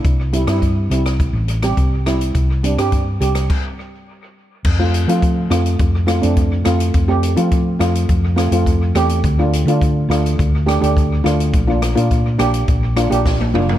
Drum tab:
CC |----------------|--------x-------|x---------------|----------------|
HH |x-xxx-xxx-xxx-xx|x-xxx-xx--------|--xxx-xxx-xxx-xx|x-xxx-xxx-xxx-xx|
SD |---r---r---r--r-|---r---r--------|------r---r---r-|------r---r---r-|
T1 |----------------|----------------|----------------|----------------|
T2 |----------------|----------------|----------------|----------------|
FT |----------------|----------------|----------------|----------------|
BD |o---o---o---o---|o---o---o-------|o---o---o---o---|o---o---o---o---|

CC |----------------|----------------|
HH |x-xxx-xxx-xxx-xx|x-xxx-xxx-xx----|
SD |------r---r---r-|--r---r---r-o---|
T1 |----------------|-------------o--|
T2 |----------------|--------------o-|
FT |----------------|---------------o|
BD |o---o---o---o---|o---o---o---o---|